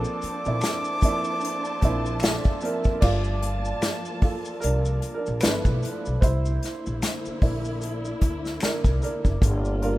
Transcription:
Already playing: F3 A#3 C4 D4 A4 C5 A5 D6
0.04 maracas
0.22 muted upright bass stroke, closed hi-hat, maracas
0.45 A#2 F3 A#3 C4 D4 E4, maracas
0.61 finger snap, snare, closed hi-hat, maracas
0.85 maracas
1.01 F3 A#3 C4 D4 E4, kick, closed hi-hat, maracas
1.24 maracas
1.41 closed hi-hat, maracas
1.65 maracas
1.81 A#1 F3 A#3 C4 D4 E4, kick, closed hi-hat, maracas
2.06 maracas
2.20 A4 E5, finger snap, snare, closed hi-hat, maracas
2.44 kick, maracas
2.61 F3 A#3 C4 D4 A#4, closed hi-hat, maracas
2.84 kick, maracas
3.01 G1 F3 A#3 F4 D5 A5, kick, crash, maracas
3.24 maracas
3.42 closed hi-hat
3.65 maracas
3.82 finger snap, snare, closed hi-hat, maracas
4.05 maracas
4.22 A#3 F4 A4, kick, open hi-hat
4.45 maracas
4.60 C2 D4 A#4, closed hi-hat, maracas
4.85 maracas
5.02 closed hi-hat, maracas
5.14 D4 A#4
5.26 A#1, maracas
5.40 G1 F3 A3 B3 D4 E4 B4, finger snap, snare, closed hi-hat, maracas
5.65 B1, kick, maracas
5.83 closed hi-hat, maracas
6.06 B1, maracas
6.21 C2 D3 A#3 E4 C5, kick, closed hi-hat, maracas
6.45 maracas
6.63 snare, closed hi-hat
6.86 A#1, maracas
7.02 finger snap, snare, closed hi-hat, maracas
7.25 muted upright bass stroke, maracas
7.41 A#1 A#3 D4 E4, kick, open hi-hat
7.65 maracas
7.81 closed hi-hat, maracas
8.05 maracas
8.21 D2, kick, closed hi-hat, maracas
8.45 snare, maracas
8.60 D4 A#4, finger snap, muted upright bass stroke, snare, closed hi-hat, maracas
8.84 C2, kick, maracas
9.02 D4 A#4, closed hi-hat, maracas
9.25 F#1, kick, maracas
9.42 G1 A#2 A#3 F4, kick, closed hi-hat, maracas
9.65 maracas
9.82 G3 A#3 D4 F4 A#4, closed hi-hat

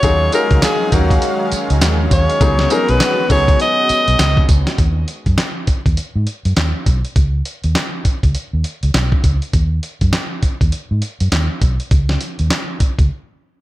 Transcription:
Already playing: C#5
0.03 D#2 D#3 F#3 G#3 C#4 D#4 F4 G#4 F5, kick, closed hi-hat, tambourine
0.32 F#3 C#4 D#4 F4 G#4 A#4, closed hi-hat, tambourine
0.51 C#2, kick, closed hi-hat
0.62 G#4, snare, clap, closed hi-hat, tambourine
0.92 D#2 F#3 C#4 D#4 F#4 A#4 F5, kick, closed hi-hat, tambourine
1.11 kick, closed hi-hat
1.22 closed hi-hat
1.52 muted fingered electric bass stroke, closed hi-hat, tambourine
1.70 C#2, closed hi-hat
1.81 D#2, snare, clap, closed hi-hat, tambourine
2.11 D#2 C#5, kick, closed hi-hat, tambourine
2.30 closed hi-hat
2.41 C#2 F#3 B3 C#4 D#4 F#4 G#4, kick, closed hi-hat, tambourine
2.59 snare
2.70 F#3 B3 C#4 D#4 G#4 A#4, closed hi-hat, tambourine
2.89 B1 B4, closed hi-hat
3.00 snare, clap, closed hi-hat, tambourine
3.30 C#2 F#3 B3 C#4 D#4 G#4 C#5, kick, open hi-hat, tambourine
3.48 kick, closed hi-hat
3.60 D#5, closed hi-hat
3.89 muted fingered electric bass stroke, closed hi-hat, tambourine
4.08 B1, closed hi-hat
4.19 C#2, snare, clap, closed hi-hat, tambourine
4.37 kick
4.49 C#2, kick, closed hi-hat, tambourine
4.67 snare, closed hi-hat
4.78 D#2, kick, closed hi-hat
5.08 closed hi-hat
5.26 F#2, kick, closed hi-hat
5.38 snare, clap, closed hi-hat
5.67 muted fingered electric bass stroke, kick, closed hi-hat
5.86 D#2, kick, closed hi-hat
5.97 muted fingered electric bass stroke, closed hi-hat
6.16 G#2
6.27 closed hi-hat
6.45 F#2, closed hi-hat
6.56 D#2, snare, clap, closed hi-hat
6.86 B1, kick, closed hi-hat
7.05 closed hi-hat
7.16 C#2, kick, closed hi-hat
7.45 closed hi-hat
7.64 D#2, closed hi-hat
7.75 snare, clap, closed hi-hat
8.05 muted fingered electric bass stroke, kick, closed hi-hat
8.23 C#2, kick, closed hi-hat
8.35 muted fingered electric bass stroke, closed hi-hat
8.53 D#2
8.64 closed hi-hat
8.83 C#2, closed hi-hat
8.94 B1, snare, clap, closed hi-hat
9.12 kick
9.24 C#2, kick, closed hi-hat
9.42 closed hi-hat
9.53 D#2, kick, closed hi-hat
9.83 closed hi-hat
10.01 F#2, kick, closed hi-hat
10.13 snare, clap, closed hi-hat
10.43 muted fingered electric bass stroke, kick, closed hi-hat
10.61 D#2, kick, closed hi-hat
10.72 closed hi-hat
10.91 G#2
11.02 closed hi-hat
11.20 F#2, closed hi-hat
11.32 D#2, snare, clap, closed hi-hat
11.62 B1, kick, closed hi-hat
11.80 closed hi-hat
11.91 C#2, kick, closed hi-hat
12.09 snare
12.21 closed hi-hat
12.39 D#2, closed hi-hat
12.50 snare, clap, closed hi-hat
12.80 muted fingered electric bass stroke, kick, closed hi-hat
12.99 C#2, kick, closed hi-hat

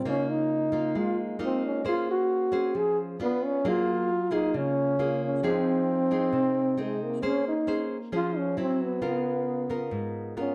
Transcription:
0.05 C#3 A#3 C#4 D#4 F4
0.30 D#4
0.72 A#3 D#4 F4
0.95 G#3 F4
1.39 A#3 D#4 F4
1.45 C4
1.66 C#4
1.85 A#3 C#4 G#4 C5
1.89 F4
2.11 F#4
2.52 C#4 G#4 C5
2.75 F3 G#4
3.20 B3 D4 F4
3.45 C#4
3.65 F#3 A#3 F4 G#4
4.31 A#3 D#4 F4 G#4
4.54 C#3 C#4
4.99 A#3 F4 G#4
5.24 C#4
5.43 F3 C4 D#4 G#4
6.11 C4 D#4 G#4
6.33 C3
6.77 C4 D#4 G#4
6.82 G#3
7.04 A#3
7.22 A#3 C#4 G#4 C5
7.48 D#4
7.67 C#4 G#4 C5
8.12 F3 C#4 F4 G#4 C5
8.38 C#4
8.57 F#3 C4 E4
8.83 B3
9.02 C#3 B3 F4 A#4
9.70 B3 F4 A#4
9.91 G#2
10.37 B3 C#4 F4 A#4

